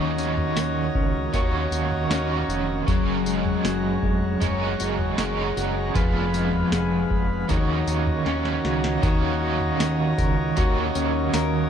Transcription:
0.00 0.48 D#2 medium
0.00 1.32 D#3 medium
0.00 2.87 D#3 medium
0.00 1.33 A#3 medium
0.00 0.18 C#4 medium
0.00 1.34 C#4 medium
0.00 0.56 F#4 medium
0.00 1.36 F#4 medium
0.00 2.84 F#4 medium
0.00 1.32 C#5 medium
0.00 2.84 C#5 medium
0.00 2.84 D#5 medium
0.00 5.91 A#5 medium
0.18 0.95 C#4 medium
0.18 tambourine medium
0.37 floor tom medium
0.56 0.90 D#2 loud
0.56 1.72 F#4 medium
0.56 snare loud
0.56 tambourine medium
0.95 1.29 C#2 medium
0.95 2.10 C#4 medium
0.95 kick medium
1.33 1.68 D#2 loud
1.33 2.08 D#3 medium
1.33 2.10 A#3 medium
1.33 2.11 C#4 medium
1.33 2.12 F#4 medium
1.33 4.41 C#5 medium
1.33 kick medium
1.33 floor tom medium
1.33 tambourine medium
1.71 2.06 D#2 medium
1.71 2.49 F#4 medium
1.71 tambourine medium
1.92 floor tom medium
2.10 2.44 D#2 medium
2.10 2.86 D#3 medium
2.10 2.88 A#3 medium
2.10 3.26 C#4 medium
2.10 2.89 C#4 medium
2.10 2.90 F#4 medium
2.10 snare loud
2.10 tambourine medium
2.49 2.83 F1 medium
2.49 3.29 F#4 medium
2.49 tambourine medium
2.87 3.55 F#1 medium
2.87 4.41 F#3 medium
2.87 5.95 F#3 medium
2.87 4.40 G#3 medium
2.87 4.40 C#4 medium
2.87 4.42 F#4 medium
2.87 7.45 G#4 medium
2.87 5.92 C#5 medium
2.87 5.92 F#5 medium
2.87 kick loud
2.87 floor tom loud
2.87 tambourine medium
2.91 4.42 A#4 medium
3.26 4.03 G#3 medium
3.26 tambourine medium
3.45 floor tom medium
3.64 3.98 F#1 loud
3.64 4.79 F#4 medium
3.64 snare loud
3.64 tambourine medium
4.03 4.37 F1 medium
4.03 5.18 G#3 medium
4.03 kick medium
4.40 4.75 F#1 loud
4.40 5.17 G#3 medium
4.40 5.18 C#4 medium
4.40 5.19 F#4 medium
4.40 5.19 A#4 medium
4.40 6.03 C#5 medium
4.40 floor tom medium
4.40 tambourine medium
4.80 5.14 F#1 medium
4.80 5.56 F#4 medium
4.80 tambourine medium
4.99 floor tom medium
5.17 5.52 F#1 loud
5.17 5.95 G#3 medium
5.17 6.03 G#3 medium
5.17 5.96 C#4 medium
5.17 5.96 F#4 medium
5.17 5.96 A#4 medium
5.17 snare loud
5.17 tambourine medium
5.57 5.91 F#1 medium
5.57 6.03 F#4 medium
5.57 tambourine medium
5.94 6.63 F1 medium
5.94 7.57 F2 medium
5.94 7.48 F3 medium
5.94 7.49 B3 medium
5.94 7.50 F4 medium
5.94 7.47 B4 medium
5.94 7.47 F5 medium
5.94 7.47 B5 medium
5.94 kick loud
5.94 floor tom loud
5.94 tambourine medium
5.99 7.51 G#4 medium
6.34 7.09 G#3 medium
6.34 tambourine medium
6.53 floor tom medium
6.72 7.06 F1 medium
6.72 7.57 G#4 medium
6.72 snare loud
6.72 tambourine medium
7.10 7.44 F1 medium
7.10 7.57 G#3 medium
7.10 kick medium
7.48 7.83 D#2 loud
7.48 8.25 D#3 medium
7.48 9.02 D#3 medium
7.48 8.26 A#3 medium
7.48 8.27 C#4 medium
7.48 9.02 F#4 medium
7.48 8.28 F#4 medium
7.48 9.01 C#5 medium
7.48 9.01 D#5 medium
7.48 9.02 A#5 medium
7.48 kick medium
7.48 floor tom medium
7.48 tambourine medium
7.87 8.21 D#2 medium
7.87 8.64 F#4 medium
7.87 tambourine medium
8.07 floor tom medium
8.25 8.60 D#2 medium
8.25 9.01 D#3 medium
8.25 9.03 A#3 medium
8.25 9.80 C#4 medium
8.25 9.05 C#4 medium
8.25 9.06 F#4 medium
8.25 snare medium
8.45 snare medium
8.65 8.99 C#2 medium
8.65 9.41 F#4 medium
8.65 snare medium
8.84 snare medium
9.02 9.71 D#2 loud
9.02 10.55 D#3 medium
9.02 11.70 D#3 medium
9.02 10.57 A#3 loud
9.02 10.58 C#4 medium
9.02 11.70 F#4 medium
9.02 11.70 C#5 medium
9.02 11.70 D#5 medium
9.02 11.70 A#5 medium
9.02 kick loud
9.02 floor tom loud
9.02 tambourine medium
9.06 10.59 F#4 medium
9.41 10.56 F#4 medium
9.61 floor tom medium
9.80 10.14 D#2 loud
9.80 10.95 C#4 medium
9.80 snare loud
9.80 tambourine loud
10.18 10.52 C#2 medium
10.18 11.34 A#4 medium
10.18 kick medium
10.18 floor tom medium
10.18 tambourine medium
10.56 10.91 D#2 loud
10.56 11.70 D#3 medium
10.56 11.70 A#3 medium
10.56 11.70 C#4 medium
10.56 11.70 F#4 medium
10.56 kick medium
10.56 floor tom medium
10.56 tambourine medium
10.95 11.29 D#2 loud
10.95 11.70 C#4 medium
10.95 tambourine medium
11.33 11.67 D#2 loud
11.33 11.70 A#4 medium
11.33 snare loud
11.33 tambourine loud

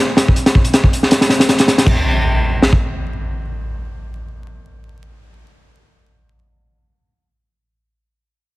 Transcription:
0.17 snare loud
0.17 closed hi-hat medium
0.28 kick medium
0.36 closed hi-hat medium
0.46 snare medium
0.46 closed hi-hat medium
0.55 kick medium
0.65 closed hi-hat medium
0.74 snare loud
0.74 closed hi-hat medium
0.84 kick medium
0.93 closed hi-hat medium
1.03 snare soft
1.11 snare loud
1.11 closed hi-hat medium
1.21 snare loud
1.21 closed hi-hat medium
1.29 snare medium
1.29 closed hi-hat medium
1.40 snare loud
1.40 closed hi-hat medium
1.49 snare loud
1.49 closed hi-hat medium
1.59 snare loud
1.59 closed hi-hat medium
1.68 snare loud
1.68 closed hi-hat medium
1.78 snare loud
1.78 closed hi-hat medium
1.87 kick loud
1.87 crash medium
1.87 impact medium
2.62 snare medium
2.73 kick medium

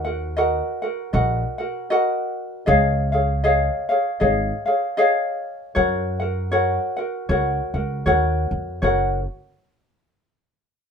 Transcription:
0.00 0.60 D#2 loud
0.05 0.36 F#4 medium
0.05 0.37 A#4 soft
0.05 0.36 F#5 medium
0.37 0.83 F#4 medium
0.37 0.82 A#4 medium
0.37 0.82 D#5 medium
0.37 0.81 F#5 medium
0.82 1.12 F#4 medium
0.82 1.13 A#4 soft
0.82 1.13 F#5 medium
1.13 1.43 A#1 loud
1.13 1.59 F#4 medium
1.13 1.58 A#4 medium
1.13 1.59 D#5 medium
1.13 1.57 F#5 medium
1.58 1.90 F#4 soft
1.58 1.90 A#4 soft
1.58 1.90 F#5 medium
1.90 2.66 F#4 medium
1.90 2.67 A#4 medium
1.90 2.66 D#5 medium
1.90 2.68 F#5 loud
2.66 3.68 C#2 loud
2.66 3.13 G#4 medium
2.66 3.12 C#5 medium
2.66 3.12 D#5 medium
2.66 3.11 F5 loud
3.12 3.43 G#4 soft
3.12 3.43 C#5 medium
3.12 3.44 F5 medium
3.44 3.90 G#4 medium
3.44 3.89 C#5 medium
3.44 3.90 D#5 medium
3.44 3.88 F5 medium
3.89 4.20 G#4 medium
3.89 4.20 C#5 medium
3.89 4.20 F5 medium
4.20 4.51 G#1 medium
4.20 4.67 G#4 medium
4.20 4.66 C#5 medium
4.20 4.66 D#5 medium
4.20 4.64 F5 medium
4.66 4.97 G#4 soft
4.66 4.97 C#5 medium
4.66 4.98 F5 medium
4.97 5.75 G#4 loud
4.97 5.75 C#5 medium
4.97 5.74 D#5 medium
4.97 5.76 F5 medium
5.75 6.76 F#2 loud
5.75 6.20 F#4 medium
5.75 6.20 A#4 medium
5.75 6.21 C#5 medium
5.75 6.18 F#5 medium
6.20 6.50 F#4 soft
6.20 6.51 A#4 medium
6.20 6.51 F#5 medium
6.52 6.98 F#4 medium
6.52 6.97 A#4 medium
6.52 6.98 C#5 medium
6.52 6.95 F#5 medium
6.97 7.29 F#4 medium
6.97 7.29 A#4 medium
6.97 7.29 F#5 medium
7.29 7.59 C#2 medium
7.29 7.75 F#4 medium
7.29 7.74 A#4 medium
7.29 7.75 C#5 medium
7.29 7.73 F#5 medium
7.74 8.03 C#2 medium
7.74 8.05 F#4 soft
7.74 8.06 A#4 medium
7.74 8.06 F#5 medium
8.06 8.48 D#2 medium
8.06 8.83 F#4 medium
8.06 8.83 A#4 medium
8.06 8.81 C#5 medium
8.06 8.84 F#5 loud
8.51 8.80 F2 medium
8.82 9.25 F#1 medium
8.82 9.20 F#4 medium
8.82 9.20 A#4 medium
8.82 9.19 C#5 medium
8.82 9.20 F#5 medium

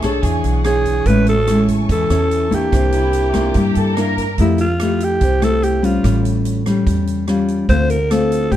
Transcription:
0.00 0.18 B1 medium
0.00 0.21 B2 medium
0.00 0.62 D4 medium
0.00 0.22 A4 medium
0.00 0.21 A4 medium
0.00 0.21 E5 medium
0.00 0.21 C#6 medium
0.00 kick soft
0.00 cross-stick medium
0.00 closed hi-hat soft
0.04 0.62 G#4 medium
0.04 0.62 C#5 medium
0.22 0.42 E2 medium
0.22 1.05 E3 medium
0.22 1.05 G#4 medium
0.22 0.54 G#4 medium
0.22 1.05 F#5 medium
0.22 2.69 C#6 medium
0.22 kick medium
0.22 closed hi-hat medium
0.44 1.02 B1 medium
0.44 closed hi-hat soft
0.64 1.05 D4 medium
0.64 1.09 G#4 medium
0.64 1.05 G#4 soft
0.64 1.05 C#5 medium
0.64 cross-stick medium
0.64 closed hi-hat soft
0.85 kick soft
0.85 closed hi-hat soft
1.06 1.85 A1 loud
1.06 1.88 A2 medium
1.06 1.33 G#3 medium
1.06 1.34 C#4 medium
1.06 1.34 E4 medium
1.06 1.27 B4 loud
1.06 2.71 G#5 medium
1.06 2.70 A5 medium
1.06 kick medium
1.06 closed hi-hat medium
1.27 1.66 A4 loud
1.27 closed hi-hat soft
1.47 2.07 G#3 medium
1.47 2.07 C#4 soft
1.47 2.08 E4 medium
1.47 cross-stick medium
1.47 closed hi-hat soft
1.68 kick soft
1.68 closed hi-hat soft
1.89 2.08 E2 medium
1.89 2.70 E3 medium
1.89 2.56 A4 medium
1.89 kick medium
1.89 closed hi-hat medium
2.10 2.68 E2 medium
2.10 2.48 C#4 medium
2.10 2.49 E4 medium
2.10 cross-stick medium
2.10 closed hi-hat soft
2.31 closed hi-hat soft
2.51 3.30 A#3 medium
2.51 3.31 D4 medium
2.51 3.31 E4 medium
2.51 kick soft
2.51 closed hi-hat soft
2.55 3.98 G4 medium
2.72 3.51 C2 medium
2.72 3.53 C3 medium
2.72 4.37 A#4 medium
2.72 4.37 E5 medium
2.72 4.37 D6 medium
2.72 kick medium
2.72 cross-stick medium
2.72 closed hi-hat medium
2.92 3.32 E4 medium
2.92 closed hi-hat soft
3.13 closed hi-hat soft
3.34 3.93 A#3 medium
3.34 3.93 D4 medium
3.34 3.94 E4 medium
3.34 3.55 F4 medium
3.34 kick soft
3.34 cross-stick medium
3.34 closed hi-hat soft
3.54 3.74 G2 medium
3.54 4.37 G3 medium
3.54 3.76 G4 medium
3.54 kick medium
3.54 closed hi-hat soft
3.75 4.34 G2 medium
3.75 3.96 A4 medium
3.75 closed hi-hat soft
3.96 4.24 A#3 soft
3.96 4.25 D4 medium
3.96 4.25 E4 medium
3.96 4.38 A#4 loud
3.96 cross-stick medium
3.96 closed hi-hat soft
4.18 kick soft
4.18 closed hi-hat soft
4.38 5.17 F2 medium
4.38 5.19 F3 medium
4.38 4.65 A3 medium
4.38 4.66 E4 soft
4.38 4.59 E4 medium
4.38 4.66 G4 medium
4.38 kick medium
4.38 closed hi-hat medium
4.58 5.05 F4 medium
4.58 closed hi-hat soft
4.80 5.22 A3 soft
4.80 5.22 E4 medium
4.80 5.22 G4 medium
4.80 cross-stick medium
4.80 closed hi-hat soft
5.00 5.46 G4 medium
5.00 closed hi-hat soft
5.21 6.00 C2 medium
5.21 6.03 C3 medium
5.21 kick soft
5.21 closed hi-hat medium
5.41 5.80 A3 medium
5.41 5.80 E4 medium
5.41 5.80 G4 medium
5.41 5.66 A4 loud
5.41 cross-stick medium
5.41 closed hi-hat soft
5.63 5.86 G4 medium
5.63 closed hi-hat soft
5.82 6.62 G3 medium
5.82 6.62 C#4 medium
5.82 6.62 F4 medium
5.82 6.25 F4 medium
5.82 closed hi-hat soft
6.03 6.83 A1 medium
6.03 6.84 A2 medium
6.03 kick soft
6.03 cross-stick soft
6.03 closed hi-hat medium
6.25 closed hi-hat soft
6.45 closed hi-hat soft
6.66 7.25 G3 medium
6.66 7.25 C#4 medium
6.66 cross-stick medium
6.66 closed hi-hat soft
6.87 7.65 E2 medium
6.87 kick medium
6.87 closed hi-hat medium
7.07 closed hi-hat soft
7.27 7.67 G3 soft
7.27 7.68 C#4 medium
7.27 7.68 F4 medium
7.27 cross-stick medium
7.27 closed hi-hat soft
7.48 closed hi-hat soft
7.69 8.48 D2 medium
7.69 8.50 D3 medium
7.69 7.96 A3 soft
7.69 7.96 C4 medium
7.69 7.96 F4 medium
7.69 7.92 C5 medium
7.69 kick medium
7.69 closed hi-hat soft
7.90 8.12 A#4 medium
7.90 closed hi-hat soft
8.11 8.52 A3 soft
8.11 8.52 C4 medium
8.11 8.52 F4 medium
8.11 8.54 A4 medium
8.11 cross-stick medium
8.11 closed hi-hat soft
8.32 closed hi-hat soft
8.51 8.56 A1 medium
8.51 8.56 A2 medium
8.51 8.56 G4 medium
8.51 kick medium
8.51 closed hi-hat soft

